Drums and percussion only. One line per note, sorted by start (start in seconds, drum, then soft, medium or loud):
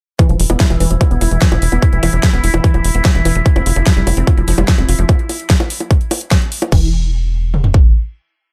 0.19 kick loud
0.19 closed hi-hat medium
0.19 high bongo soft
0.29 closed hi-hat soft
0.40 open hi-hat loud
0.50 closed hi-hat medium
0.50 high bongo medium
0.60 kick loud
0.60 snare loud
0.60 closed hi-hat medium
0.70 closed hi-hat soft
0.70 high bongo soft
0.80 open hi-hat loud
0.91 closed hi-hat medium
1.01 kick loud
1.01 closed hi-hat medium
1.01 high bongo medium
1.11 closed hi-hat soft
1.21 open hi-hat loud
1.21 high bongo soft
1.31 closed hi-hat medium
1.42 kick loud
1.42 snare loud
1.42 closed hi-hat medium
1.52 closed hi-hat soft
1.52 high bongo medium
1.62 open hi-hat loud
1.72 closed hi-hat medium
1.72 high bongo soft
1.82 kick loud
1.82 closed hi-hat medium
1.93 closed hi-hat soft
2.03 open hi-hat loud
2.03 high bongo medium
2.13 closed hi-hat medium
2.23 kick loud
2.23 snare loud
2.23 closed hi-hat medium
2.23 high bongo soft
2.33 closed hi-hat soft
2.44 open hi-hat loud
2.54 closed hi-hat medium
2.54 high bongo medium
2.64 kick loud
2.64 closed hi-hat medium
2.74 closed hi-hat soft
2.74 high bongo soft
2.84 open hi-hat loud
2.95 closed hi-hat medium
3.05 kick loud
3.05 snare loud
3.05 closed hi-hat medium
3.05 high bongo medium
3.15 closed hi-hat soft
3.25 open hi-hat loud
3.25 high bongo soft
3.35 closed hi-hat medium
3.46 kick loud
3.46 closed hi-hat medium
3.56 closed hi-hat soft
3.56 high bongo medium
3.66 open hi-hat loud
3.76 closed hi-hat medium
3.76 high bongo soft
3.87 kick loud
3.87 snare loud
3.87 closed hi-hat medium
3.97 closed hi-hat soft
4.07 open hi-hat loud
4.07 high bongo medium
4.17 closed hi-hat medium
4.27 kick loud
4.27 closed hi-hat medium
4.27 high bongo soft
4.38 closed hi-hat soft
4.48 open hi-hat loud
4.58 closed hi-hat medium
4.58 high bongo medium
4.68 kick loud
4.68 snare loud
4.68 closed hi-hat medium
4.78 closed hi-hat soft
4.78 high bongo soft
4.89 open hi-hat loud
4.99 closed hi-hat medium
5.09 kick loud
5.09 closed hi-hat soft
5.09 high bongo medium
5.19 closed hi-hat soft
5.29 open hi-hat loud
5.29 high bongo soft
5.40 closed hi-hat soft
5.50 kick loud
5.50 snare loud
5.50 closed hi-hat medium
5.60 closed hi-hat soft
5.60 high bongo medium
5.70 open hi-hat loud
5.80 closed hi-hat medium
5.80 high bongo soft
5.91 kick loud
5.91 closed hi-hat soft
6.01 closed hi-hat soft
6.11 open hi-hat loud
6.11 high bongo medium
6.21 closed hi-hat medium
6.31 kick loud
6.31 snare loud
6.31 closed hi-hat medium
6.31 high bongo soft
6.42 closed hi-hat soft
6.52 open hi-hat loud
6.62 closed hi-hat medium
6.62 high bongo medium
6.72 kick loud
6.72 crash medium
7.54 mid tom medium
7.64 floor tom medium
7.74 kick medium